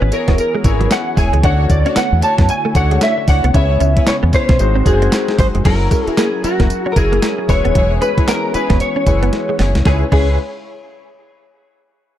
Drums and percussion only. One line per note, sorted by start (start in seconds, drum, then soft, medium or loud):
0.12 closed hi-hat medium
0.12 tambourine medium
0.28 kick loud
0.28 snare medium
0.28 closed hi-hat medium
0.38 closed hi-hat medium
0.38 tambourine medium
0.64 kick loud
0.64 closed hi-hat medium
0.64 tambourine medium
0.81 closed hi-hat medium
0.91 snare loud
0.91 clap loud
0.91 closed hi-hat medium
0.91 tambourine loud
1.17 kick medium
1.17 open hi-hat medium
1.17 tambourine medium
1.33 closed hi-hat medium
1.44 kick loud
1.44 closed hi-hat medium
1.70 kick medium
1.70 closed hi-hat medium
1.70 tambourine medium
1.86 closed hi-hat medium
1.96 snare loud
1.96 clap loud
1.96 closed hi-hat medium
1.96 tambourine loud
2.22 closed hi-hat medium
2.22 tambourine medium
2.38 kick loud
2.38 snare medium
2.38 closed hi-hat medium
2.49 closed hi-hat medium
2.49 tambourine medium
2.75 kick loud
2.75 closed hi-hat medium
2.75 tambourine medium
2.91 closed hi-hat medium
3.01 snare loud
3.01 clap loud
3.01 closed hi-hat medium
3.01 tambourine loud
3.28 kick medium
3.28 open hi-hat medium
3.28 tambourine medium
3.44 closed hi-hat medium
3.54 kick loud
3.54 closed hi-hat medium
3.80 closed hi-hat medium
3.80 tambourine medium
3.97 kick loud
3.97 closed hi-hat medium
4.07 snare loud
4.07 clap loud
4.07 closed hi-hat medium
4.07 tambourine loud
4.33 kick loud
4.33 open hi-hat medium
4.33 tambourine medium
4.49 kick loud
4.49 snare medium
4.49 closed hi-hat medium
4.59 closed hi-hat medium
4.59 tambourine medium
4.86 kick medium
4.86 closed hi-hat medium
4.86 tambourine medium
5.02 closed hi-hat medium
5.12 snare loud
5.12 clap loud
5.12 closed hi-hat medium
5.12 tambourine loud
5.28 snare medium
5.39 kick medium
5.39 open hi-hat medium
5.39 tambourine medium
5.55 closed hi-hat medium
5.65 kick loud
5.65 closed hi-hat medium
5.65 crash loud
5.91 kick medium
5.91 closed hi-hat medium
5.91 tambourine medium
6.07 closed hi-hat medium
6.17 snare loud
6.17 clap loud
6.17 closed hi-hat medium
6.17 tambourine loud
6.44 closed hi-hat medium
6.44 tambourine medium
6.60 kick loud
6.60 snare medium
6.60 closed hi-hat medium
6.70 closed hi-hat medium
6.70 tambourine medium
6.96 kick medium
6.96 closed hi-hat medium
6.96 tambourine medium
7.13 closed hi-hat medium
7.22 snare loud
7.22 clap loud
7.22 closed hi-hat medium
7.22 tambourine loud
7.49 kick medium
7.49 open hi-hat medium
7.49 tambourine medium
7.65 closed hi-hat soft
7.75 kick loud
7.75 closed hi-hat medium
8.02 closed hi-hat medium
8.02 tambourine medium
8.18 kick medium
8.18 closed hi-hat soft
8.28 snare loud
8.28 clap loud
8.28 closed hi-hat medium
8.28 tambourine loud
8.54 closed hi-hat medium
8.54 tambourine medium
8.70 kick loud
8.70 snare medium
8.70 closed hi-hat medium
8.80 closed hi-hat medium
8.80 tambourine medium
9.06 kick loud
9.06 closed hi-hat medium
9.06 tambourine medium
9.23 closed hi-hat medium
9.33 snare medium
9.33 closed hi-hat medium
9.59 snare loud
9.59 open hi-hat medium
9.75 snare medium
9.75 closed hi-hat soft
9.85 kick loud
9.85 snare loud
10.12 kick loud
10.12 crash medium